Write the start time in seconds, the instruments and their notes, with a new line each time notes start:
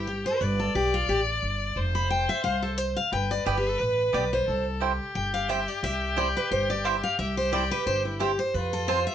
Already playing: upright bass G1, fiddle G4
0.07 steel-string acoustic guitar G4
0.26 steel-string acoustic guitar C5
0.41 upright bass G1, steel-string acoustic guitar B4, fiddle D5
0.60 steel-string acoustic guitar A4
0.75 upright bass B1, steel-string acoustic guitar G4
0.94 steel-string acoustic guitar F4
1.08 upright bass A1, steel-string acoustic guitar G4
1.42 upright bass G1
1.76 upright bass F1, fiddle C5
1.95 steel-string acoustic guitar B5
2.10 steel-string acoustic guitar G5
2.29 steel-string acoustic guitar E5
2.44 upright bass C2, steel-string acoustic guitar F5
2.62 steel-string acoustic guitar A4
2.78 steel-string acoustic guitar C5
2.96 steel-string acoustic guitar F5
3.12 upright bass G1, fiddle B4, steel-string acoustic guitar G5
3.31 steel-string acoustic guitar D5
3.45 upright bass G1, mandolin B3 G4 D5 G5, steel-string acoustic guitar B4
3.57 steel-string acoustic guitar G4
3.69 steel-string acoustic guitar A4
3.80 upright bass A1, steel-string acoustic guitar B4
4.13 upright bass B1, mandolin B3 G4 D5 G5, steel-string acoustic guitar D5
4.33 steel-string acoustic guitar C5
4.47 upright bass C2, fiddle A4
4.81 mandolin C4 E4 C5 G5, fiddle G4
5.15 upright bass G1, steel-string acoustic guitar G5
5.34 steel-string acoustic guitar F5
5.48 mandolin C4 E4 C5 G5, steel-string acoustic guitar E5
5.68 steel-string acoustic guitar D5
5.83 upright bass C2, steel-string acoustic guitar E5
6.16 mandolin C4 E4 C5 G5, steel-string acoustic guitar D5
6.37 steel-string acoustic guitar B4
6.51 upright bass G1, steel-string acoustic guitar C5
6.70 steel-string acoustic guitar D5
6.84 mandolin C4 E4 C5 G5, steel-string acoustic guitar E5
7.04 steel-string acoustic guitar F5
7.19 upright bass C2, fiddle G4, steel-string acoustic guitar E5
7.37 steel-string acoustic guitar C5
7.52 mandolin C4 E4 C5 G5, steel-string acoustic guitar D5
7.71 steel-string acoustic guitar B4
7.86 upright bass G1, steel-string acoustic guitar C5
8.05 steel-string acoustic guitar E4
8.20 mandolin C4 E4 C5 G5, steel-string acoustic guitar G4
8.39 steel-string acoustic guitar C5
8.54 upright bass F2, fiddle F4, steel-string acoustic guitar B4
8.73 steel-string acoustic guitar A4
8.88 mandolin C4 F4 C5 A5, steel-string acoustic guitar C5
9.07 steel-string acoustic guitar E5